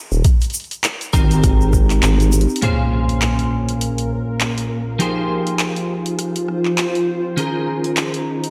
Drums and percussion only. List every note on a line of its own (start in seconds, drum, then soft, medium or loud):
0.12 shaker soft
0.24 kick loud
0.24 closed hi-hat medium
0.24 shaker medium
0.41 closed hi-hat soft
0.41 shaker soft
0.44 closed hi-hat soft
0.50 closed hi-hat soft
0.50 shaker medium
0.54 closed hi-hat soft
0.60 closed hi-hat soft
0.64 closed hi-hat soft
0.71 closed hi-hat soft
0.71 shaker soft
0.84 clap loud
0.84 closed hi-hat medium
0.84 shaker soft
1.01 closed hi-hat soft
1.01 shaker soft
1.14 kick loud
1.14 cross-stick soft
1.14 shaker medium
1.31 closed hi-hat medium
1.31 shaker soft
1.44 kick loud
1.44 cross-stick medium
1.44 closed hi-hat medium
1.44 shaker medium
1.61 shaker soft
1.73 kick medium
1.73 cross-stick soft
1.73 shaker medium
1.90 clap soft
1.90 closed hi-hat soft
1.90 shaker soft
2.03 clap loud
2.03 closed hi-hat medium
2.03 shaker soft
2.20 closed hi-hat soft
2.20 shaker soft
2.32 closed hi-hat medium
2.32 shaker medium
2.41 closed hi-hat medium
2.49 shaker soft
2.56 closed hi-hat medium
2.62 closed hi-hat medium
3.09 closed hi-hat soft
3.22 clap loud
3.22 closed hi-hat medium
3.39 closed hi-hat soft
3.69 closed hi-hat soft
3.81 closed hi-hat medium
3.98 closed hi-hat soft
4.41 clap loud
4.41 closed hi-hat medium
4.58 closed hi-hat soft
5.00 closed hi-hat medium
5.47 closed hi-hat soft
5.59 clap loud
5.59 closed hi-hat medium
5.76 closed hi-hat soft
6.06 closed hi-hat soft
6.19 cross-stick soft
6.19 closed hi-hat medium
6.36 closed hi-hat soft
6.48 cross-stick soft
6.65 clap soft
6.78 clap loud
6.78 closed hi-hat medium
6.95 closed hi-hat soft
7.38 closed hi-hat medium
7.84 closed hi-hat soft
7.97 clap loud
7.97 closed hi-hat medium
8.14 closed hi-hat soft
8.44 closed hi-hat soft